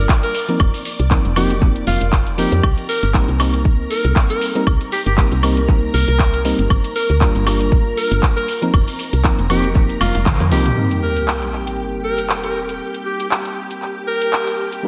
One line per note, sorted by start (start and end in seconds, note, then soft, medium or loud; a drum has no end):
0.00 0.33 G3 medium
0.00 0.33 A#3 medium
0.00 0.33 D4 medium
0.00 0.34 F4 medium
0.00 0.34 A#4 medium
0.00 2.65 D5 medium
0.00 2.65 D6 medium
0.09 kick loud
0.09 clap loud
0.23 0.40 A#4 medium
0.23 closed hi-hat medium
0.35 open hi-hat loud
0.48 0.64 F3 medium
0.48 0.64 A#3 medium
0.48 0.64 C4 medium
0.48 0.64 D#4 medium
0.48 0.64 A#4 medium
0.48 closed hi-hat medium
0.60 0.71 F1 medium
0.60 kick loud
0.60 high woodblock medium
0.74 open hi-hat medium
0.85 open hi-hat loud
0.99 1.18 C2 medium
0.99 closed hi-hat medium
1.10 1.33 F3 medium
1.10 1.33 A#3 medium
1.10 1.33 C4 medium
1.10 1.33 D#4 medium
1.10 1.33 A#4 medium
1.10 kick loud
1.10 clap loud
1.25 1.83 F1 loud
1.25 closed hi-hat soft
1.36 1.53 F3 medium
1.36 1.54 A#3 medium
1.36 1.54 C4 medium
1.36 1.54 D#4 medium
1.36 1.54 G4 medium
1.36 1.54 A#4 loud
1.36 open hi-hat loud
1.36 high woodblock medium
1.50 closed hi-hat medium
1.61 2.35 F3 medium
1.61 2.35 A#3 medium
1.61 2.35 C4 medium
1.61 2.36 D#4 medium
1.61 2.36 A#4 medium
1.61 kick loud
1.61 clap soft
1.76 closed hi-hat soft
1.87 1.98 F1 medium
1.87 2.05 F4 medium
1.87 open hi-hat loud
2.01 2.46 F1 medium
2.01 closed hi-hat medium
2.13 kick loud
2.13 clap loud
2.27 closed hi-hat soft
2.38 2.55 F3 medium
2.38 2.55 A#3 medium
2.38 2.55 C4 medium
2.38 2.56 D#4 medium
2.38 2.69 G4 medium
2.38 2.56 A#4 loud
2.38 open hi-hat loud
2.52 2.61 F2 medium
2.52 closed hi-hat medium
2.63 2.74 C2 loud
2.63 10.78 A#4 medium
2.63 10.78 A#5 medium
2.63 kick loud
2.63 high woodblock medium
2.78 closed hi-hat soft
2.89 3.07 A#4 medium
2.89 open hi-hat loud
3.03 3.21 G1 loud
3.03 closed hi-hat medium
3.14 3.37 G3 medium
3.14 3.37 A#3 medium
3.14 3.37 C4 medium
3.14 3.37 D#4 medium
3.14 3.37 A#4 loud
3.14 kick loud
3.14 clap loud
3.28 3.86 C2 medium
3.28 closed hi-hat soft
3.39 4.52 G3 medium
3.39 4.52 A#3 medium
3.39 4.52 C4 medium
3.39 4.52 D#4 medium
3.39 4.53 A#4 medium
3.39 clap soft
3.39 open hi-hat loud
3.39 high woodblock medium
3.54 closed hi-hat medium
3.65 kick loud
3.90 4.09 A#4 medium
3.90 open hi-hat loud
4.05 4.13 C2 medium
4.05 closed hi-hat medium
4.16 kick loud
4.16 clap loud
4.30 4.47 A#4 medium
4.30 closed hi-hat soft
4.41 open hi-hat loud
4.55 4.71 G3 medium
4.55 4.71 A#3 medium
4.55 4.71 C4 medium
4.55 4.71 D#4 medium
4.55 4.71 A#4 medium
4.55 closed hi-hat medium
4.67 4.77 C2 medium
4.67 kick loud
4.67 high woodblock medium
4.81 closed hi-hat soft
4.92 5.01 G4 medium
4.92 open hi-hat loud
5.06 5.25 G1 loud
5.06 5.14 G4 medium
5.06 closed hi-hat medium
5.17 5.39 G3 medium
5.17 5.40 A#3 medium
5.17 5.40 C4 medium
5.17 5.40 D#4 medium
5.17 5.40 A#4 medium
5.17 kick loud
5.17 clap loud
5.32 5.89 C2 loud
5.32 closed hi-hat soft
5.43 5.60 G3 medium
5.43 5.60 A#3 medium
5.43 5.60 C4 medium
5.43 5.61 D#4 medium
5.43 5.61 A#4 loud
5.43 open hi-hat loud
5.43 high woodblock medium
5.57 closed hi-hat medium
5.68 6.42 G3 medium
5.68 6.42 A#3 medium
5.68 6.42 C4 medium
5.68 6.42 D#4 medium
5.68 6.43 A#4 medium
5.68 kick loud
5.68 clap soft
5.94 6.05 C2 medium
5.94 6.45 A#4 medium
5.94 open hi-hat loud
6.08 6.53 C2 medium
6.08 closed hi-hat medium
6.19 kick loud
6.19 clap loud
6.33 closed hi-hat medium
6.44 6.62 G3 medium
6.44 6.62 A#3 medium
6.44 6.62 C4 medium
6.44 6.62 D#4 medium
6.44 6.62 A#4 loud
6.44 open hi-hat loud
6.59 6.67 G1 medium
6.59 closed hi-hat medium
6.70 6.81 G1 medium
6.70 kick loud
6.70 high woodblock medium
6.84 closed hi-hat medium
6.96 7.14 A#4 medium
6.96 open hi-hat loud
7.10 7.28 D2 medium
7.10 closed hi-hat medium
7.21 7.44 G3 medium
7.21 7.44 A#3 medium
7.21 7.44 D4 medium
7.21 7.44 F4 medium
7.21 7.44 A#4 loud
7.21 kick loud
7.21 clap loud
7.35 7.93 G1 loud
7.35 closed hi-hat soft
7.46 8.46 G3 medium
7.46 8.47 A#3 medium
7.46 8.47 D4 medium
7.46 8.47 F4 medium
7.46 8.47 A#4 medium
7.46 clap soft
7.46 open hi-hat loud
7.46 high woodblock medium
7.61 closed hi-hat medium
7.72 kick loud
7.97 8.15 A#4 medium
7.97 open hi-hat loud
8.11 8.20 G1 loud
8.11 closed hi-hat medium
8.23 kick loud
8.23 clap loud
8.37 8.54 A#4 medium
8.37 closed hi-hat medium
8.48 open hi-hat loud
8.62 8.77 F3 medium
8.62 8.78 A#3 medium
8.62 8.78 C4 medium
8.62 8.78 D#4 medium
8.62 8.78 A#4 medium
8.62 closed hi-hat medium
8.74 8.84 F1 loud
8.74 kick loud
8.74 high woodblock medium
8.88 open hi-hat medium
8.99 open hi-hat loud
9.13 9.31 C2 medium
9.13 closed hi-hat medium
9.24 9.46 F3 medium
9.24 9.46 A#3 medium
9.24 9.47 C4 medium
9.24 9.47 D#4 medium
9.24 9.47 A#4 medium
9.24 kick loud
9.24 clap loud
9.39 9.96 F1 loud
9.39 closed hi-hat soft
9.50 9.67 F3 medium
9.50 9.67 A#3 medium
9.50 9.67 C4 medium
9.50 9.67 D#4 medium
9.50 9.68 G4 medium
9.50 9.68 A#4 loud
9.50 open hi-hat medium
9.50 high woodblock medium
9.64 closed hi-hat medium
9.74 10.48 F3 medium
9.74 10.49 A#3 medium
9.74 10.49 C4 medium
9.74 10.49 D#4 medium
9.74 10.49 A#4 medium
9.74 kick loud
9.74 clap soft
9.89 closed hi-hat soft
10.01 10.11 F1 medium
10.01 10.19 F4 medium
10.01 open hi-hat loud
10.01 high tom medium
10.01 high woodblock medium
10.15 10.28 F1 medium
10.15 closed hi-hat medium
10.15 high tom medium
10.26 10.37 A#1 loud
10.26 kick loud
10.26 clap loud
10.26 mid tom medium
10.40 10.53 F2 medium
10.40 closed hi-hat medium
10.40 mid tom medium
10.51 10.71 C2 loud
10.51 10.69 F3 medium
10.51 10.69 A#3 medium
10.51 10.69 C4 medium
10.51 10.69 D#4 medium
10.51 10.77 G4 medium
10.51 10.69 A#4 loud
10.51 open hi-hat loud
10.66 closed hi-hat medium
10.66 mid tom medium
10.76 14.81 G3 medium
10.76 14.81 A#3 medium
10.76 14.81 C4 medium
10.76 14.81 D#4 medium
10.76 14.88 G4 medium
10.76 14.82 A#4 medium
10.76 14.88 G5 medium
10.76 sub drop medium
10.91 closed hi-hat soft
11.02 11.21 A#4 medium
11.17 closed hi-hat medium
11.28 clap loud
11.42 closed hi-hat soft
11.53 clap soft
11.67 closed hi-hat medium
12.04 12.22 A#4 medium
12.18 closed hi-hat medium
12.30 clap loud
12.44 12.60 A#4 medium
12.44 closed hi-hat soft
12.69 closed hi-hat medium
12.94 closed hi-hat soft
13.06 13.15 G4 medium
13.20 13.27 G4 medium
13.20 closed hi-hat medium
13.31 clap loud
13.45 closed hi-hat soft
13.71 closed hi-hat medium
13.82 clap soft
14.07 14.58 A#4 medium
14.22 closed hi-hat medium
14.33 clap loud
14.47 closed hi-hat soft
14.72 closed hi-hat medium
14.83 14.88 G3 medium
14.83 14.88 A#3 medium
14.83 14.88 D4 medium
14.83 14.88 F4 medium
14.83 14.88 A#4 medium